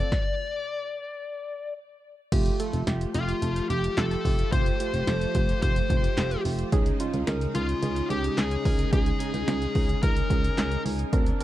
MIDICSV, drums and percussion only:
0, 0, Header, 1, 2, 480
1, 0, Start_track
1, 0, Tempo, 550459
1, 105, Time_signature, 4, 2, 24, 8
1, 9973, End_track
2, 0, Start_track
2, 0, Title_t, "Drums"
2, 104, Note_on_c, 9, 36, 104
2, 105, Note_on_c, 9, 38, 91
2, 192, Note_off_c, 9, 36, 0
2, 192, Note_off_c, 9, 38, 0
2, 2024, Note_on_c, 9, 36, 115
2, 2024, Note_on_c, 9, 42, 78
2, 2025, Note_on_c, 9, 49, 98
2, 2111, Note_off_c, 9, 36, 0
2, 2112, Note_off_c, 9, 42, 0
2, 2112, Note_off_c, 9, 49, 0
2, 2143, Note_on_c, 9, 42, 52
2, 2230, Note_off_c, 9, 42, 0
2, 2265, Note_on_c, 9, 42, 92
2, 2352, Note_off_c, 9, 42, 0
2, 2384, Note_on_c, 9, 42, 53
2, 2471, Note_off_c, 9, 42, 0
2, 2503, Note_on_c, 9, 42, 80
2, 2504, Note_on_c, 9, 38, 106
2, 2591, Note_off_c, 9, 38, 0
2, 2591, Note_off_c, 9, 42, 0
2, 2626, Note_on_c, 9, 42, 51
2, 2713, Note_off_c, 9, 42, 0
2, 2742, Note_on_c, 9, 42, 79
2, 2829, Note_off_c, 9, 42, 0
2, 2866, Note_on_c, 9, 42, 50
2, 2953, Note_off_c, 9, 42, 0
2, 2984, Note_on_c, 9, 42, 80
2, 3071, Note_off_c, 9, 42, 0
2, 3106, Note_on_c, 9, 42, 57
2, 3193, Note_off_c, 9, 42, 0
2, 3228, Note_on_c, 9, 42, 66
2, 3315, Note_off_c, 9, 42, 0
2, 3349, Note_on_c, 9, 42, 59
2, 3436, Note_off_c, 9, 42, 0
2, 3465, Note_on_c, 9, 42, 65
2, 3468, Note_on_c, 9, 38, 110
2, 3468, Note_on_c, 9, 39, 91
2, 3553, Note_off_c, 9, 42, 0
2, 3555, Note_off_c, 9, 38, 0
2, 3555, Note_off_c, 9, 39, 0
2, 3587, Note_on_c, 9, 42, 51
2, 3674, Note_off_c, 9, 42, 0
2, 3707, Note_on_c, 9, 36, 95
2, 3709, Note_on_c, 9, 46, 74
2, 3794, Note_off_c, 9, 36, 0
2, 3797, Note_off_c, 9, 46, 0
2, 3827, Note_on_c, 9, 42, 55
2, 3914, Note_off_c, 9, 42, 0
2, 3945, Note_on_c, 9, 36, 119
2, 3946, Note_on_c, 9, 42, 79
2, 4033, Note_off_c, 9, 36, 0
2, 4034, Note_off_c, 9, 42, 0
2, 4065, Note_on_c, 9, 42, 51
2, 4153, Note_off_c, 9, 42, 0
2, 4186, Note_on_c, 9, 42, 91
2, 4273, Note_off_c, 9, 42, 0
2, 4305, Note_on_c, 9, 42, 55
2, 4392, Note_off_c, 9, 42, 0
2, 4425, Note_on_c, 9, 38, 108
2, 4425, Note_on_c, 9, 42, 81
2, 4512, Note_off_c, 9, 38, 0
2, 4512, Note_off_c, 9, 42, 0
2, 4547, Note_on_c, 9, 42, 53
2, 4634, Note_off_c, 9, 42, 0
2, 4662, Note_on_c, 9, 42, 81
2, 4665, Note_on_c, 9, 36, 89
2, 4750, Note_off_c, 9, 42, 0
2, 4752, Note_off_c, 9, 36, 0
2, 4787, Note_on_c, 9, 42, 50
2, 4874, Note_off_c, 9, 42, 0
2, 4904, Note_on_c, 9, 42, 81
2, 4906, Note_on_c, 9, 36, 95
2, 4991, Note_off_c, 9, 42, 0
2, 4993, Note_off_c, 9, 36, 0
2, 5024, Note_on_c, 9, 42, 54
2, 5112, Note_off_c, 9, 42, 0
2, 5144, Note_on_c, 9, 36, 93
2, 5147, Note_on_c, 9, 42, 69
2, 5231, Note_off_c, 9, 36, 0
2, 5234, Note_off_c, 9, 42, 0
2, 5267, Note_on_c, 9, 42, 59
2, 5354, Note_off_c, 9, 42, 0
2, 5383, Note_on_c, 9, 42, 64
2, 5386, Note_on_c, 9, 38, 109
2, 5386, Note_on_c, 9, 39, 87
2, 5470, Note_off_c, 9, 42, 0
2, 5473, Note_off_c, 9, 38, 0
2, 5473, Note_off_c, 9, 39, 0
2, 5504, Note_on_c, 9, 42, 52
2, 5592, Note_off_c, 9, 42, 0
2, 5627, Note_on_c, 9, 46, 73
2, 5714, Note_off_c, 9, 46, 0
2, 5743, Note_on_c, 9, 42, 56
2, 5831, Note_off_c, 9, 42, 0
2, 5863, Note_on_c, 9, 42, 83
2, 5864, Note_on_c, 9, 36, 112
2, 5950, Note_off_c, 9, 42, 0
2, 5951, Note_off_c, 9, 36, 0
2, 5981, Note_on_c, 9, 42, 52
2, 6069, Note_off_c, 9, 42, 0
2, 6103, Note_on_c, 9, 42, 90
2, 6190, Note_off_c, 9, 42, 0
2, 6222, Note_on_c, 9, 42, 53
2, 6310, Note_off_c, 9, 42, 0
2, 6341, Note_on_c, 9, 42, 83
2, 6342, Note_on_c, 9, 38, 106
2, 6429, Note_off_c, 9, 38, 0
2, 6429, Note_off_c, 9, 42, 0
2, 6465, Note_on_c, 9, 42, 52
2, 6552, Note_off_c, 9, 42, 0
2, 6582, Note_on_c, 9, 42, 82
2, 6669, Note_off_c, 9, 42, 0
2, 6705, Note_on_c, 9, 42, 50
2, 6793, Note_off_c, 9, 42, 0
2, 6824, Note_on_c, 9, 42, 81
2, 6911, Note_off_c, 9, 42, 0
2, 6944, Note_on_c, 9, 42, 55
2, 7031, Note_off_c, 9, 42, 0
2, 7066, Note_on_c, 9, 42, 67
2, 7153, Note_off_c, 9, 42, 0
2, 7187, Note_on_c, 9, 42, 58
2, 7275, Note_off_c, 9, 42, 0
2, 7304, Note_on_c, 9, 42, 65
2, 7306, Note_on_c, 9, 38, 108
2, 7306, Note_on_c, 9, 39, 88
2, 7391, Note_off_c, 9, 42, 0
2, 7394, Note_off_c, 9, 38, 0
2, 7394, Note_off_c, 9, 39, 0
2, 7423, Note_on_c, 9, 42, 51
2, 7511, Note_off_c, 9, 42, 0
2, 7545, Note_on_c, 9, 36, 96
2, 7546, Note_on_c, 9, 46, 72
2, 7632, Note_off_c, 9, 36, 0
2, 7634, Note_off_c, 9, 46, 0
2, 7664, Note_on_c, 9, 42, 57
2, 7751, Note_off_c, 9, 42, 0
2, 7784, Note_on_c, 9, 36, 112
2, 7784, Note_on_c, 9, 42, 78
2, 7871, Note_off_c, 9, 36, 0
2, 7871, Note_off_c, 9, 42, 0
2, 7903, Note_on_c, 9, 42, 52
2, 7990, Note_off_c, 9, 42, 0
2, 8025, Note_on_c, 9, 42, 90
2, 8112, Note_off_c, 9, 42, 0
2, 8144, Note_on_c, 9, 42, 55
2, 8232, Note_off_c, 9, 42, 0
2, 8265, Note_on_c, 9, 38, 103
2, 8265, Note_on_c, 9, 42, 82
2, 8352, Note_off_c, 9, 38, 0
2, 8352, Note_off_c, 9, 42, 0
2, 8387, Note_on_c, 9, 42, 52
2, 8474, Note_off_c, 9, 42, 0
2, 8503, Note_on_c, 9, 46, 59
2, 8505, Note_on_c, 9, 36, 92
2, 8590, Note_off_c, 9, 46, 0
2, 8592, Note_off_c, 9, 36, 0
2, 8627, Note_on_c, 9, 42, 49
2, 8714, Note_off_c, 9, 42, 0
2, 8743, Note_on_c, 9, 42, 81
2, 8746, Note_on_c, 9, 36, 97
2, 8831, Note_off_c, 9, 42, 0
2, 8833, Note_off_c, 9, 36, 0
2, 8864, Note_on_c, 9, 42, 57
2, 8951, Note_off_c, 9, 42, 0
2, 8984, Note_on_c, 9, 36, 88
2, 8987, Note_on_c, 9, 42, 67
2, 9071, Note_off_c, 9, 36, 0
2, 9074, Note_off_c, 9, 42, 0
2, 9108, Note_on_c, 9, 42, 59
2, 9195, Note_off_c, 9, 42, 0
2, 9224, Note_on_c, 9, 42, 64
2, 9226, Note_on_c, 9, 38, 108
2, 9226, Note_on_c, 9, 39, 91
2, 9311, Note_off_c, 9, 42, 0
2, 9313, Note_off_c, 9, 38, 0
2, 9313, Note_off_c, 9, 39, 0
2, 9344, Note_on_c, 9, 42, 51
2, 9431, Note_off_c, 9, 42, 0
2, 9467, Note_on_c, 9, 46, 73
2, 9555, Note_off_c, 9, 46, 0
2, 9584, Note_on_c, 9, 42, 56
2, 9672, Note_off_c, 9, 42, 0
2, 9704, Note_on_c, 9, 36, 117
2, 9704, Note_on_c, 9, 42, 78
2, 9791, Note_off_c, 9, 36, 0
2, 9791, Note_off_c, 9, 42, 0
2, 9823, Note_on_c, 9, 42, 53
2, 9910, Note_off_c, 9, 42, 0
2, 9946, Note_on_c, 9, 42, 88
2, 9973, Note_off_c, 9, 42, 0
2, 9973, End_track
0, 0, End_of_file